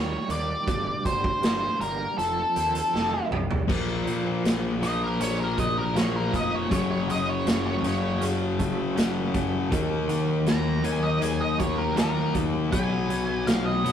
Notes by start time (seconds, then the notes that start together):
Already playing: D#2 G3 A#3 D#4 C#5
0.29 D#2 D#3 D5, closed hi-hat
0.67 G1 G2, kick, closed hi-hat
1.05 G1 G3 C5, kick, closed hi-hat
1.24 kick
1.42 G1 A#3, snare, closed hi-hat
1.80 G1 G3 A#4, closed hi-hat
2.18 F1 F2 A4, closed hi-hat
2.56 D#2 C4, closed hi-hat
2.75 closed hi-hat
2.93 F1 D#3, snare
3.31 C2 C3, mid tom
3.51 floor tom
3.67 A#1 A#2 F3 A#3, kick, crash
4.07 A#2 F3, closed hi-hat
4.44 A#1 A#2, snare, closed hi-hat
4.81 A#2 F3 A#3 D#5, closed hi-hat
5.03 A#4
5.20 A#1 C#4 C#5, closed hi-hat
5.40 A#4
5.57 A#1 A#3 D#5, kick, closed hi-hat
5.79 A#4
5.93 A#1 A#2 F3 A#3, snare, closed hi-hat
5.98 C#5
6.16 A#4
6.33 F1 A#3 D#5, kick, closed hi-hat
6.55 C#5
6.69 F#1 F#2 C#3 F#3 C#5, kick, closed hi-hat
6.92 C#5
7.08 F#1 F#3 D#5, closed hi-hat
7.30 C#5
7.45 F#1 C#3, snare, closed hi-hat
7.49 C#5
7.67 C#5
7.82 F#1 F#2 C#3 F#3, closed hi-hat
7.87 C#5
8.21 F#1 C#4, closed hi-hat
8.58 F#1 A3, kick, closed hi-hat
8.96 F#1 F#2 C#3 F#3, snare, closed hi-hat
9.34 F#1 A3, kick, closed hi-hat
9.70 D#2 D#3 A#3 D#4, kick, closed hi-hat
10.09 D#3 F#3, closed hi-hat
10.46 D#2 D#3 A#5, snare, closed hi-hat
10.83 D#3 F#3 A#3 D#4 G#5, closed hi-hat
11.03 D#5
11.21 D#2 D#4 G#5, closed hi-hat
11.41 D#5
11.58 D#2 A#3 C#5, kick, closed hi-hat
11.78 A#4
11.96 D#2 D#3 F#3 A#3 D#4 A#4, snare, closed hi-hat
12.34 D#2 A#3, kick, closed hi-hat
12.72 B1 B2 F#3 B3 G#5, kick, closed hi-hat
13.10 B1 F#3, closed hi-hat
13.47 B1 B2 F5, snare, closed hi-hat
13.65 D#5
13.84 B1 B2 F#3 B3, closed hi-hat